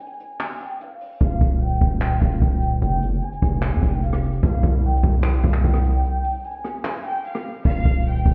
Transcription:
0.00 violin section G#5, closed hi-hat
0.07 closed hi-hat
0.13 closed hi-hat
0.20 closed hi-hat
0.40 violin section G#5, clap, closed hi-hat
0.60 violin section G5, closed hi-hat
0.81 violin section F5, closed hi-hat
1.01 open hi-hat
1.21 808-style bass D#1, violin section F5, kick, closed hi-hat
1.41 808-style bass D#1, kick, closed hi-hat
1.61 violin section G5, closed hi-hat
1.68 closed hi-hat
1.75 closed hi-hat
1.81 808-style bass D#1, kick, closed hi-hat
2.01 violin section G5, clap, closed hi-hat
2.22 808-style bass D#1, violin section F5, kick, closed hi-hat
2.42 808-style bass D#1, violin section G5, kick, closed hi-hat
2.62 closed hi-hat
2.82 808-style bass F1, violin section G5, closed hi-hat
3.02 808-style bass G1, closed hi-hat
3.12 808-style bass F1
3.22 violin section G#5, closed hi-hat
3.32 closed hi-hat
3.42 808-style bass F1, kick, closed hi-hat
3.62 violin section G#5, clap, closed hi-hat
3.72 808-style bass F2
3.82 808-style bass F1, violin section G5, kick, closed hi-hat
4.03 violin section F5, closed hi-hat
4.13 cross-stick
4.23 closed hi-hat
4.33 closed hi-hat
4.43 808-style bass C2, violin section F5, kick, closed hi-hat
4.63 808-style bass C2, kick, closed hi-hat
4.83 violin section G5, closed hi-hat
4.90 closed hi-hat
4.97 closed hi-hat
5.03 808-style bass C2, kick, closed hi-hat
5.23 violin section G5, clap, closed hi-hat
5.44 808-style bass C2, violin section F5, kick, closed hi-hat
5.54 clap
5.64 808-style bass C2, violin section G5, kick, closed hi-hat
5.74 cross-stick
5.84 closed hi-hat
6.04 violin section G5, closed hi-hat
6.24 closed hi-hat
6.29 closed hi-hat
6.34 closed hi-hat
6.39 closed hi-hat
6.44 violin section G#5, closed hi-hat
6.51 closed hi-hat
6.58 closed hi-hat
6.64 cross-stick, closed hi-hat
6.85 violin section G#5, clap, closed hi-hat
7.05 violin section G5, closed hi-hat
7.25 violin section F5, closed hi-hat
7.35 cross-stick
7.45 open hi-hat
7.65 808-style bass D#1, violin section F5, kick
7.85 808-style bass D#1, kick
8.05 violin section G5
8.26 808-style bass D#1, kick

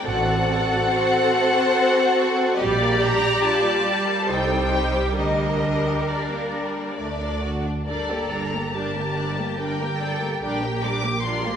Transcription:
Already playing: violin section D5
0.05 double bass section A1, violin section A3 F#5, viola section C4 F#4, cello section A4
0.27 violin section C4
0.51 violin section F#4
0.73 violin section A4
0.93 violin section F#4 C5
1.15 violin section C4
1.34 violin section A3
1.55 violin section C4
1.75 violin section F#4
1.96 violin section A4
2.16 violin section F#4
2.38 violin section C4
2.55 violin section G3 D5 D#5
2.60 double bass section A#1, viola section G3 G4, cello section G4, violin section D5
2.80 violin section A#3
3.01 violin section D4 A#5
3.23 violin section G4
3.40 violin section D4
3.44 cello section F4, violin section A5
3.62 violin section A#3
3.85 violin section G3, cello section G4
4.07 violin section A#3
4.27 double bass section C2, violin section G3 C5, viola section D#4, cello section A4
4.32 violin section G5
4.49 violin section C4
4.71 violin section D#4, cello section G4
4.94 violin section G4
5.16 double bass section D2, violin section G3 A#4 D#5, viola section D4, cello section A#4
5.41 violin section A#3
5.63 violin section D4
5.88 violin section G4
6.08 violin section D4 D5
6.33 violin section A#3
6.57 violin section G3
6.78 violin section A#3
6.97 double bass section D2, violin section A3 D5, viola section A3
7.20 violin section D4
7.41 violin section F#4
7.65 violin section D4
7.86 double bass section G1, viola section G3 D4, cello section A4, violin section A#4 D5
8.09 viola section A#3, violin section G4 A#4
8.31 viola section G3 D4, violin section A#4 D5 A#5
8.54 viola section A#3, violin section G4 A#4
8.73 viola section G3 D4, cello section G4, violin section A#4 D5 A5
8.96 viola section A#3, violin section G4 A#4
9.16 viola section G3 D4, violin section A#4 D5
9.37 viola section A#3, violin section G4 A#4
9.59 viola section G3 D4, cello section A#4, violin section A#4 D5 G5
9.80 viola section A#3, violin section G4 A#4
10.01 viola section G3 D4, cello section A4, violin section A#4 D5
10.21 viola section A#3, violin section G4 A#4
10.42 double bass section A#1, viola section G3 D4, cello section G4, violin section A#4 D5 G5
10.63 viola section A#3, violin section G4 A#4
10.83 viola section G3 D4, violin section A#4 D5 D6
11.04 viola section A#3, violin section G4 A#4
11.23 viola section G3 D4, cello section F4, violin section A#4 D5 C6
11.45 viola section A#3, violin section G4 A#4

